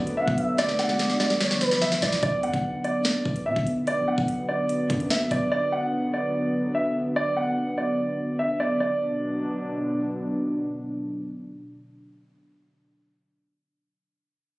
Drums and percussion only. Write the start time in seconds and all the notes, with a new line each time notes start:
0.07 closed hi-hat
0.28 kick
0.38 closed hi-hat
0.58 snare, closed hi-hat
0.69 snare
0.79 snare
0.89 snare
0.99 snare, closed hi-hat
1.10 snare
1.20 snare
1.30 snare
1.41 snare, closed hi-hat
1.51 snare
1.61 snare, closed hi-hat
1.71 snare, closed hi-hat
1.82 snare
1.92 snare
2.02 snare, closed hi-hat
2.12 snare
2.23 kick, closed hi-hat
2.43 closed hi-hat
2.54 kick, closed hi-hat
2.84 closed hi-hat
3.05 snare
3.25 kick
3.36 closed hi-hat
3.56 kick
3.67 closed hi-hat
3.87 closed hi-hat
4.18 kick
4.28 closed hi-hat
4.69 closed hi-hat
4.90 kick, closed hi-hat
5.00 closed hi-hat
5.10 snare
5.31 kick, closed hi-hat